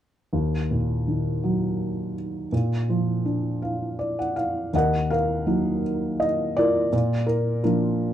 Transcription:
0.33 D#2
0.71 A#2
1.08 D#3
1.44 F#3
2.52 A#2
2.89 F3
3.25 D4
3.62 F5
3.99 D5
4.19 F#5
4.36 F5
4.73 D#2 A#4 D#5 F#5
5.10 A#4 F5
5.47 F#3 A#3 D#4
6.20 D#5
6.57 F4 A#4 D5
6.92 A#2
7.26 A#4
7.64 F3 A#3 D4 F4 A#4

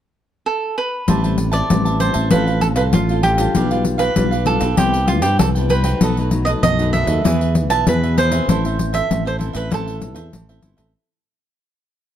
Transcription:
0.46 A4
0.78 B4
1.08 A1 A2 G3 C4 E4 G4 C5 E5 A5, pandeiro
1.23 G3 C4 E4 C5 E5 A5, pandeiro
1.38 muted cavaquinho stroke, pandeiro
1.52 C5 D5 E5 A5, pandeiro
1.70 A1 E3 G3 C4 E4, pandeiro
1.85 C5 E5 A5, pandeiro
2.00 G3 C4 E4 G4 C5 E5 A5, pandeiro
2.14 A1 C5 E5 A5, pandeiro
2.31 A1 A2 F3 C4 F4 A4 B4 C5 F5, pandeiro
2.46 A4 C5 F5, pandeiro
2.61 F3 C4 F4 A4, muted cavaquinho stroke, pandeiro
2.76 C2 A4 B4 C5 F5, pandeiro
2.93 A1 A2 F4, pandeiro
3.09 F3 C4 F4 A4 C5 F5, pandeiro
3.23 F4 G4 A4 C5 F5, pandeiro
3.38 G3 D4 F4 A4 C5 F5, pandeiro
3.55 B1 B2 D4 G4 B4 F5, pandeiro
3.71 G3 D4 F4 G4 B4 F5, pandeiro
3.85 muted cavaquinho stroke, pandeiro
3.98 G4 B4 F5, pandeiro
4.16 B1 B2 G3 D4 F4, pandeiro
4.31 G4 B4 F5, pandeiro
4.45 G3 D4 F4 G4 A4 B4 F5, pandeiro
4.60 B1 G4 B4 F5, pandeiro
4.77 C2 C3 G3 B3 E4 G4 B4 C5 G5, pandeiro
4.93 B4 C5 G5, pandeiro
5.08 G3 B3 E4 F4, muted cavaquinho stroke, pandeiro
5.22 G2 G4 B4 C5 G5, pandeiro
5.39 C2 G2 A4, pandeiro
5.55 G3 B3 E4 B4 C5 G5, pandeiro
5.69 E4 B4 C5 G5, pandeiro
5.84 F#3 A3 D#4 B4 C5 G5, pandeiro
6.01 B1 B2 D#4 A4 B4 D#5, pandeiro
6.17 F#3 A3 D#4 A4 B4 D#5, pandeiro
6.31 F#3 A3 D#4, muted cavaquinho stroke, pandeiro
6.45 A4 B4 D#5, pandeiro
6.63 B1 F#2 D#5, pandeiro
6.79 F#3 A3 D#4 A4 B4 D#5, pandeiro
6.93 D#4 A4 B4 D#5 E5, pandeiro
7.07 D#2 A4 B4 D#5, pandeiro
7.24 E2 E3 B3 E4 G#4 B4 E5, pandeiro
7.41 G#4 B4 E5, pandeiro
7.55 muted cavaquinho stroke, pandeiro
7.69 B1 G#4 B4 E5 A5, pandeiro
7.87 E2 B2 B3 E4 G#4 B4, pandeiro
8.03 G#4 B4 E5, pandeiro
8.17 E4 G#4 B4 C5 E5, pandeiro
8.32 E3 C4 E4 G#4 B4 E5, pandeiro
8.48 A1 A2 E4 A4 C5 E5, pandeiro
8.64 E3 C4 E4 A4 C5 E5, pandeiro
8.79 muted cavaquinho stroke, pandeiro
8.93 A4 C5 E5, pandeiro
9.10 A1 E3 C4 E4, pandeiro
9.25 A4 C5 E5, pandeiro
9.38 E3 C4 E4 A4 C5 E5, pandeiro
9.53 A1 A4 B4 C5 E5, pandeiro
9.70 A1 A2 E3 C4 E4 A4 C5 E5, pandeiro
9.87 A4 C5 E5, pandeiro
10.00 E3 C4 E4, muted cavaquinho stroke, pandeiro
10.15 E2 A4 C5 E5, pandeiro
10.33 A1 E3, pandeiro
10.49 E3 C4 E4 A4 C5 E5, pandeiro
10.62 G1 E4 A4 C5 E5, pandeiro
10.77 A1 E3 C4 E4 A4 C5 E5, pandeiro

